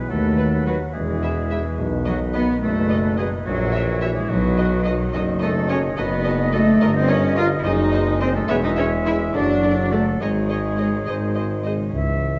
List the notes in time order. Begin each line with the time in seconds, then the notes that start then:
Already playing: E3 G#3 B3 E4 G#4 B4
0.09 D#2 D#3 F#3 A3 A4
0.36 B3 F#4 B4
0.65 F#3 F#4 B4
0.93 E1 E2 E3 G#3 G#4
1.21 E4 B4 E5
1.50 E4 B4 E5
1.78 B1 B2 D#3 B4
2.06 F#3 D#4 F#4 B4 D#5
2.34 B3 F#4 B4 D#5
2.61 F#1 A3 C#4 A4
2.90 B3 F#4 B4 D#5
3.18 G#3 D#4 F#4 G#4 B4 D#5
3.46 A#1 A#2 E3 F#3 F#4 C#5
3.74 C#4 F#4 C#5 E5
4.01 E3 E4 F#4 C#5 E5
4.15 G#3 G#4
4.29 B1 B2 D#3 F#3 F#4 B4
4.57 B3 F#4 B4 D#5
4.85 D#4 F#4 B4 D#5
5.14 F#1 F#2 F#4 A4 D#5
5.41 A3 D#4 F#4 A4 D#5
5.68 A3 C#4 F#4 A4 C#5 D#5
5.97 F#1 B3 F#4 A4 B4 D#5
6.24 A3 F#4 A4 D#5
6.52 A3 D#4 F#4 A4 D#5
6.81 G1 G2 A#4 D#5
6.94 C4 C5
7.08 A#3 C#4 A#4 C#5 D#5
7.36 D#4 F4 A#4 D#5 F5
7.58 E4
7.65 F#1 F#2 G#3 D#4 G#4 C5 D#5
7.92 C4 G#4 C5 D#5
8.20 C4 D#4 G#4 C5 D#5
8.34 A3 A4
8.48 E1 E2 G#3 B3 G#4 B4 C#5 E5
8.62 D#4 D#5
8.76 C#4 G#4 C#5 E5
9.05 E4 G#4 C#5 E5
9.33 F#1 F#2 F#3 D4 A4 D5
9.63 A3 A4 D5
9.91 A3 D4 A4 D5
10.20 G#1 G#2 D#3 G#3 G#4 C#5 D#5
10.49 C#4 G#4 C#5 D#5
10.78 D#4 G#4 C#5 D#5
11.07 G#1 G#2 D#3 G#4 C5 D#5
11.35 C4 G#4 C5 D#5
11.64 D#4 G#4 C5 D#5
11.76 C#3
11.81 G#3
11.85 C#4
11.90 C#2 E3 G#4
11.94 E5